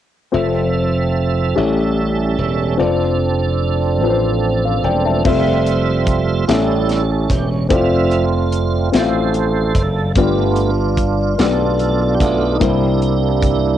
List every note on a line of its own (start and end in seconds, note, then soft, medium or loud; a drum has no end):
0.32 1.53 F1 medium
0.32 1.56 F3 soft
0.32 1.33 C4 medium
0.32 1.56 C4 soft
0.32 1.33 F4 medium
0.32 1.33 A4 medium
0.32 1.55 A4 soft
0.32 1.34 E5 medium
0.36 2.78 E5 soft
1.56 2.35 A1 medium
1.56 2.75 A2 medium
1.56 2.78 G3 soft
1.56 2.56 C#4 medium
1.56 2.78 C#4 soft
1.56 2.56 G4 soft
1.56 2.78 A4 medium
1.56 2.57 A4 medium
1.56 2.57 E5 medium
2.38 2.76 E1 medium
2.78 4.01 F1 medium
2.78 5.23 F3 medium
2.78 3.79 C4 medium
2.78 5.23 C4 soft
2.78 5.23 D4 soft
2.78 3.79 F4 medium
2.78 3.79 A4 medium
2.78 5.23 A4 medium
2.78 3.80 D5 medium
4.01 4.80 A1 medium
4.01 5.02 C4 medium
4.01 5.03 F4 medium
4.01 5.03 A4 medium
4.01 4.10 B4 soft
4.10 4.47 C5 medium
4.65 4.84 C5 soft
4.65 4.84 F5 soft
4.84 5.22 E1 medium
4.84 5.04 D5 soft
4.84 5.04 G5 medium
5.05 5.24 E5 soft
5.05 5.44 A5 soft
5.24 6.44 F1 medium
5.24 6.45 G3 soft
5.24 6.45 A3 medium
5.24 6.25 C4 medium
5.24 6.25 F4 medium
5.24 6.25 A4 medium
5.24 6.26 E5 medium
5.24 6.45 E5 soft
5.24 kick medium
5.24 crash medium
5.28 6.45 C4 soft
5.28 6.53 F4 medium
5.67 closed hi-hat soft
6.07 kick medium
6.07 closed hi-hat medium
6.48 7.26 A1 medium
6.48 7.67 A2 soft
6.48 7.02 G3 soft
6.48 7.48 C#4 medium
6.48 7.67 C#4 medium
6.48 7.03 E4 soft
6.48 7.48 G4 medium
6.48 7.11 A4 medium
6.48 7.49 A4 medium
6.48 7.49 E5 medium
6.48 snare medium
6.48 closed hi-hat medium
6.89 snare soft
6.89 closed hi-hat soft
7.12 7.32 A4 medium
7.30 7.67 E1 medium
7.30 7.50 G4 medium
7.30 kick medium
7.30 closed hi-hat medium
7.69 8.89 F1 medium
7.69 8.25 F3 soft
7.69 8.89 A3 medium
7.69 8.70 C4 medium
7.69 8.89 C4 medium
7.69 7.77 E4 soft
7.69 8.70 A4 medium
7.69 8.71 D5 medium
7.69 8.26 E5 soft
7.69 kick medium
7.69 closed hi-hat medium
7.73 8.98 F4 medium
7.73 8.73 F4 medium
8.11 closed hi-hat soft
8.52 closed hi-hat medium
8.92 9.72 A1 medium
8.92 9.93 C4 medium
8.92 9.93 F4 medium
8.92 9.93 A4 soft
8.92 10.12 A4 medium
8.92 9.83 C5 medium
8.92 9.00 E5 soft
8.92 snare medium
8.92 closed hi-hat medium
9.00 9.97 F5 medium
9.34 closed hi-hat soft
9.75 10.13 F#1 medium
9.75 kick medium
9.75 closed hi-hat medium
10.15 11.35 G1 medium
10.15 11.35 G2 soft
10.15 10.70 A3 soft
10.15 10.71 B3 medium
10.15 11.16 B3 medium
10.15 11.35 D4 medium
10.15 11.39 F4 medium
10.15 11.16 F4 medium
10.15 11.17 G4 medium
10.15 11.17 D5 medium
10.15 kick medium
10.15 closed hi-hat medium
10.56 closed hi-hat soft
10.97 kick medium
10.97 closed hi-hat medium
11.38 12.17 B1 medium
11.38 11.45 A3 soft
11.38 12.58 D4 medium
11.38 12.38 F4 soft
11.38 12.20 F4 medium
11.38 12.39 G4 soft
11.38 12.39 D5 medium
11.38 snare medium
11.38 closed hi-hat medium
11.42 12.41 B3 medium
11.42 12.00 A4 medium
11.79 closed hi-hat soft
12.01 12.15 A4 medium
12.15 12.21 G4 medium
12.20 12.58 B1 medium
12.20 12.57 A3 soft
12.20 12.58 B3 soft
12.20 12.57 F4 medium
12.20 kick medium
12.20 closed hi-hat medium
12.55 12.62 D#4 medium
12.59 13.78 C2 medium
12.59 13.78 C3 soft
12.59 13.78 G3 soft
12.59 13.60 A#3 medium
12.59 13.78 A#3 medium
12.59 13.78 D4 soft
12.59 13.61 E4 medium
12.59 13.78 E4 medium
12.59 13.61 G4 medium
12.59 13.61 C5 medium
12.59 kick medium
12.59 closed hi-hat medium
13.02 closed hi-hat soft
13.42 kick medium
13.42 closed hi-hat medium